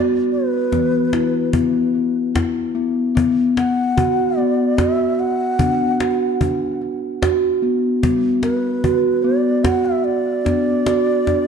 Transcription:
Already playing: steel tongue drum G3 F#4
0.32 bansuri B4
0.72 steel tongue drum E3 B3, cajon bass, cajon slap
1.13 steel tongue drum E4, cajon slap
1.53 steel tongue drum B3, cajon bass
2.35 steel tongue drum E4, cajon bass, cajon slap
2.75 steel tongue drum B3
3.15 steel tongue drum B3, cajon bass
3.57 bansuri F#5, cajon slap
3.97 steel tongue drum F#4, cajon bass
4.38 steel tongue drum B3, bansuri D5, cajon slap
4.78 steel tongue drum F#4, bansuri E5, cajon bass, cajon slap
5.20 bansuri F#5
5.59 steel tongue drum B3 D4, cajon bass
6.00 steel tongue drum F#4, cajon slap
6.41 steel tongue drum D4, cajon bass
6.82 cajon slap
7.22 steel tongue drum F#4, cajon bass, cajon slap
7.62 steel tongue drum B3
8.03 steel tongue drum G3 B3, cajon bass
8.43 bansuri B4, cajon slap
8.84 steel tongue drum F#4, cajon bass
9.23 steel tongue drum B3, bansuri D5, cajon slap
9.64 steel tongue drum F#4, bansuri F#5, cajon bass, cajon slap
9.85 bansuri E5
10.04 bansuri D5
10.45 steel tongue drum B3 D4, cajon bass, cajon slap
10.68 cajon slap
10.86 steel tongue drum F#4, cajon slap
11.27 steel tongue drum D4, cajon bass, cajon slap

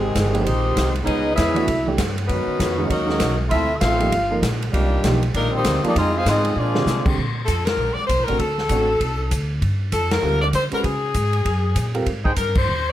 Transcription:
Already playing: upright bass G#1, trombone section C3 D#3 G#3, saxophone section D#3 C4 G4 G#4
0.15 upright bass G1, kick, snare, hi-hat pedal, ride
0.33 grand piano F3 A#3 D#4 G4, ride
0.41 upright bass A#1, trombone section D#3 C4 G4, saxophone section G#3 D#4 G4 C5
0.46 kick, ride
0.77 upright bass C2, kick, snare, hi-hat pedal, ride
0.95 ride
1.03 upright bass C#2, trombone section G#3 B3 D#4, saxophone section C#4 G#4 B4 D#5
1.07 kick, ride
1.35 upright bass E2, trombone section G#3 B3 E4, saxophone section C#4 G#4 B4 E5, kick, snare, hi-hat pedal, ride
1.54 grand piano E3 A3 D4 F#4, ride
1.67 upright bass C2, kick, ride
1.86 grand piano E3 A3 D4 G4
1.98 upright bass G2, kick, snare, hi-hat pedal, ride
2.18 ride
2.27 upright bass F#2, trombone section D#3 B3, saxophone section C#4 D#4 F#4 B4, kick, ride
2.31 trombone section F#4
2.47 muted upright bass stroke
2.59 upright bass F2, kick, snare, hi-hat pedal, ride
2.78 grand piano D#3 G#3 C#4 F#4
2.87 upright bass D#2, trombone section F#3 A#3 D#4, saxophone section C#4 F#4 A#4 D#5, kick, ride
3.07 grand piano D#3 G#3 C#4 D#4, snare
3.20 upright bass B1, kick, snare, hi-hat pedal, ride
3.48 upright bass D2, trombone section A3 C4 E4, saxophone section C4 F4 A4 E5, kick, ride
3.77 saxophone section C4 A4 E5 F5
3.81 upright bass A1, trombone section A3 C4 F4, kick, snare, hi-hat pedal, ride
4.00 grand piano F3 A#3 D#4 G4, ride
4.12 upright bass G1, kick, ride
4.30 grand piano F3 A#3 D#4 A#4
4.42 upright bass A#1, kick, snare, hi-hat pedal, ride
4.62 ride
4.73 upright bass C2, trombone section A#2 D#3 G3, saxophone section D#3 A#3 D4 G4, kick, ride
5.03 upright bass B1, grand piano F3 A#3 D#4 G4, kick, snare, hi-hat pedal, ride
5.23 ride
5.34 upright bass A#1, trombone section D#3 G3 A#3, saxophone section G3 D4 D#4 A#4, kick, ride
5.51 trombone section D#3 G3 C4
5.56 saxophone section A#3 D#4 G4 C5
5.64 upright bass D2, kick, snare, hi-hat pedal, ride
5.83 grand piano F3 A#3 D#4 F4, trombone section G3 A#3 D4, muted upright bass stroke, ride
5.87 saxophone section A#3 D#4 G4 D5
5.96 upright bass F2, trombone section G#3 C4 D#4, saxophone section C4 F4 G#4 D#5, kick, ride
6.15 trombone section G#3 C4 F4, saxophone section D#4 G#4 C5 F5
6.25 upright bass G#2, trombone section G#3 C4 D#4, saxophone section C4 F4 G#4 D#5, kick, snare, hi-hat pedal, ride
6.45 ride
6.56 upright bass A#2, trombone section F3 G#3 D4, saxophone section A#3 F4 G#4 D5
6.74 grand piano D3 G3 C4 F4, snare
6.85 upright bass C3, snare, hi-hat pedal
7.05 grand piano D3 G3 C4 G4, kick, crash
7.17 upright bass A#2, kick
7.46 upright bass F2, saxophone section A4, kick, hi-hat pedal, ride
7.65 saxophone section A#4, snare, ride
7.77 upright bass A#1
7.94 saxophone section D5, muted upright bass stroke
8.07 upright bass C2, saxophone section C5, kick, hi-hat pedal, ride
8.18 upright bass A#1
8.25 grand piano A3 C4 D4, saxophone section A#4, ride
8.29 upright bass A1, grand piano F#4
8.38 upright bass D2, saxophone section A4, kick, ride
8.58 snare
8.69 upright bass A1, grand piano A3 C4 D4 F#4, kick, hi-hat pedal, ride
9.01 upright bass C2, kick, ride
9.31 upright bass D2, kick, hi-hat pedal, ride
9.61 upright bass G2, kick, ride
9.92 upright bass F2, saxophone section A4, kick, hi-hat pedal, ride
10.11 saxophone section A#4, snare, ride
10.22 upright bass D2, grand piano G3 C4 F4 A#4
10.42 saxophone section D5
10.53 upright bass D3, saxophone section C5, kick, hi-hat pedal, ride
10.71 grand piano G#3 C#4 F#4 B4, saxophone section A#4, muted upright bass stroke, ride
10.83 upright bass C#3, saxophone section G#4, kick, ride
11.14 upright bass G#2, kick, hi-hat pedal, ride
11.33 ride
11.45 upright bass F#2, kick, ride
11.75 upright bass A#2, kick, hi-hat pedal, ride
11.94 grand piano G3 C4 F4 A#4, ride
12.06 upright bass G#2, kick, ride
12.24 trumpet section D#4 G#4 C5 G5, kick
12.36 upright bass G2, saxophone section A#4, kick, hi-hat pedal, ride
12.55 saxophone section C5, kick, crash
12.68 upright bass D#2

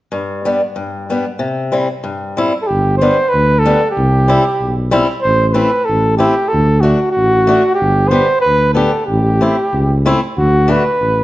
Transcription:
0.12 steel-string acoustic guitar G2
0.45 steel-string acoustic guitar G3 B3 D4
0.76 steel-string acoustic guitar G2
1.10 steel-string acoustic guitar G3 B3 D4
1.39 steel-string acoustic guitar C3
1.72 steel-string acoustic guitar G3 C4 E4
2.04 steel-string acoustic guitar G2
2.37 steel-string acoustic guitar G3 C4 E4
2.62 flugelhorn A4
2.67 tuba G1, flugelhorn G4
2.98 steel-string acoustic guitar G3, flugelhorn C5
3.02 steel-string acoustic guitar B3 D4
3.29 flugelhorn B4
3.33 tuba D2
3.59 flugelhorn A4
3.65 steel-string acoustic guitar G3 B3 D4
3.91 flugelhorn G4
3.97 tuba C2
4.28 steel-string acoustic guitar G3 C4 E4
4.61 tuba B1
4.91 steel-string acoustic guitar G3 C4 E4
5.22 tuba A1, flugelhorn C5
5.49 flugelhorn C5
5.53 steel-string acoustic guitar A3 C4 E4, flugelhorn B4
5.85 flugelhorn A4
5.89 tuba A1
6.17 steel-string acoustic guitar A3 C4 E4, flugelhorn G4
6.48 flugelhorn A4
6.53 tuba D2
6.81 steel-string acoustic guitar A3 D4 F#4, flugelhorn F#4
7.11 flugelhorn F#4
7.17 tuba A1
7.47 steel-string acoustic guitar A3 D4 F#4
7.75 flugelhorn G4
7.81 tuba G1
8.08 steel-string acoustic guitar B3, flugelhorn C5
8.13 steel-string acoustic guitar D4 G4
8.41 flugelhorn B4
8.46 tuba D2
8.74 steel-string acoustic guitar B3 D4 G4, flugelhorn A4
9.06 tuba A1, flugelhorn G4
9.41 steel-string acoustic guitar A3 C4 E4
9.73 tuba C#2
10.06 steel-string acoustic guitar A3 C4 E4
10.37 tuba D2, flugelhorn F#4
10.68 steel-string acoustic guitar A3 D4 F#4, flugelhorn B4
11.01 tuba A1

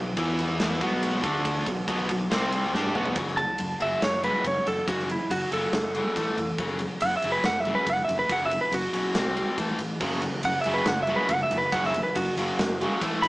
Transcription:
Already playing: picked electric bass B1, overdriven electric guitar B2 F#3
0.17 picked electric bass E2, overdriven electric guitar E3 B3 E4, kick, ride
0.39 ride
0.60 snare, ride
0.81 picked electric bass B1, overdriven electric guitar B2 F#3 B3, kick, ride
1.03 ride
1.24 picked electric bass D2, overdriven electric guitar D3 A3 D4, kick, ride
1.45 kick, ride
1.66 picked electric bass B1, overdriven electric guitar B2 F#3, kick, ride
1.88 picked electric bass B1, overdriven electric guitar B2 F#3 B3, kick, ride
2.09 picked electric bass B1, overdriven electric guitar B2 F#3, kick, ride
2.31 picked electric bass C2, overdriven electric guitar C3 G3 C4, snare, ride
2.52 ride
2.73 picked electric bass G2, overdriven electric guitar G3 D4 G4, snare
2.84 high tom
2.95 picked electric bass B1, overdriven electric guitar B2 F#3 B3, mid tom
3.06 floor tom
3.16 picked electric bass F#1, overdriven electric guitar F#2 C#3 F#3, kick, ride
3.28 snare
3.37 overdriven electric guitar F#2 C#3, lead electric guitar A5, ride
3.58 picked electric bass F#1, overdriven electric guitar F#2 C#3, ride
3.80 picked electric bass F#1, overdriven electric guitar F#2 C#3 F#3, lead electric guitar E5, ride
4.02 picked electric bass F#1, overdriven electric guitar F#2 C#3, lead electric guitar C#5, snare, ride
4.23 overdriven electric guitar F#2 C#3 F#3, lead electric guitar B4, ride
4.45 picked electric bass F#1, overdriven electric guitar F#2 C#3, lead electric guitar C#5, kick, ride
4.66 picked electric bass F#1, overdriven electric guitar F#2 C#3, lead electric guitar A4, ride
4.87 picked electric bass F#1, overdriven electric guitar F#2 C#3 F#3, lead electric guitar F#4, kick, ride
4.99 snare
5.09 overdriven electric guitar F#2 C#3, lead electric guitar E4, ride
5.30 picked electric bass F#1, overdriven electric guitar F#2 C#3, lead electric guitar F#4, ride
5.52 picked electric bass F#1, overdriven electric guitar F#2 C#3 F#3, lead electric guitar A4, ride
5.73 picked electric bass F#1, overdriven electric guitar F#2 C#3, snare, ride
5.95 overdriven electric guitar F#2 C#3 F#3, ride
6.16 picked electric bass A1, overdriven electric guitar A2 E3 A3, kick, ride
6.37 picked electric bass F1, overdriven electric guitar A2 E3, ride
6.58 picked electric bass F#1, overdriven electric guitar F#2 C#3 F#3, kick, ride
6.79 overdriven electric guitar F#2 C#3, ride
7.00 picked electric bass F#1, overdriven electric guitar F#2 C#3, lead electric guitar F#5, ride
7.17 lead electric guitar E5
7.22 picked electric bass F#1, overdriven electric guitar F#2 C#3 F#3, ride
7.32 lead electric guitar B4
7.44 picked electric bass F#1, overdriven electric guitar F#2 C#3, lead electric guitar F#5, snare, ride
7.60 lead electric guitar E5
7.65 overdriven electric guitar F#2 C#3 F#3, ride
7.75 lead electric guitar B4
7.87 picked electric bass F#1, overdriven electric guitar F#2 C#3, lead electric guitar F#5, kick, ride
8.05 lead electric guitar E5
8.09 picked electric bass F#1, overdriven electric guitar F#2 C#3, ride
8.19 lead electric guitar B4
8.29 picked electric bass F#1, overdriven electric guitar F#2 C#3 F#3, lead electric guitar F#5, kick, ride
8.46 lead electric guitar E5
8.51 overdriven electric guitar F#2 C#3, ride
8.61 lead electric guitar B4
8.72 picked electric bass F#1, overdriven electric guitar F#2 C#3, lead electric guitar F#4, ride
8.93 picked electric bass B1, overdriven electric guitar F#2 C#3 F#3, ride
9.14 picked electric bass C2, overdriven electric guitar C3 G3 C4, snare, ride
9.36 overdriven electric guitar C3 G3 C4, ride
9.57 picked electric bass A1, overdriven electric guitar A2 E3 A3, kick, ride
9.79 picked electric bass A1, overdriven electric guitar A2 E3, ride
10.00 picked electric bass F#1, overdriven electric guitar F#2 C#3 F#3, kick, crash
10.22 overdriven electric guitar F#2 C#3, ride
10.43 picked electric bass F#1, overdriven electric guitar F#2 C#3, lead electric guitar F#5, ride
10.61 lead electric guitar E5, ride
10.65 picked electric bass F#1, overdriven electric guitar F#2 C#3 F#3
10.74 lead electric guitar B4
10.86 picked electric bass F#1, overdriven electric guitar F#2 C#3, lead electric guitar F#5, snare, ride
11.03 lead electric guitar E5
11.07 overdriven electric guitar F#2 C#3 F#3, ride
11.16 lead electric guitar B4
11.28 picked electric bass F#1, overdriven electric guitar F#2 C#3, lead electric guitar F#5, kick, ride
11.43 lead electric guitar E5
11.51 picked electric bass F#1, overdriven electric guitar F#2 C#3, ride
11.58 lead electric guitar B4
11.72 picked electric bass F#1, overdriven electric guitar F#2 C#3 F#3, lead electric guitar F#5, kick, ride
11.83 lead electric guitar E5, snare
11.94 overdriven electric guitar F#2 C#3, ride
12.03 lead electric guitar B4
12.15 picked electric bass F#1, overdriven electric guitar F#2 C#3, lead electric guitar F#4, ride
12.37 picked electric bass F#1, overdriven electric guitar F#2 C#3 F#3, ride
12.58 picked electric bass F#1, overdriven electric guitar F#2 C#3, snare, ride
12.81 overdriven electric guitar F#2 C#3 F#3, ride
13.01 picked electric bass A1, overdriven electric guitar A2 E3 A3, kick, ride
13.22 picked electric bass G#1, overdriven electric guitar A2, lead electric guitar B5, ride

